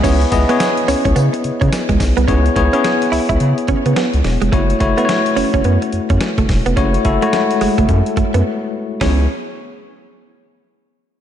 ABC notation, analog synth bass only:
X:1
M:4/4
L:1/16
Q:"Swing 16ths" 1/4=107
K:C#m
V:1 name="Analog synth bass" clef=bass
C,,2 C,, z3 C,, C,, C, z C, C, z C,, B,,, ^B,,, | C,,2 C,, z3 C,, C,, C, z C, C, z C,, E,,, ^E,,, | F,,,2 F,,, z3 F,,, F,,, F,, z F,, F,, z F,,, E,,, ^E,,, | F,,,2 F,,, z3 F,,, F,,, F,, z F,, F,, z4 |
C,,2 z12 z2 |]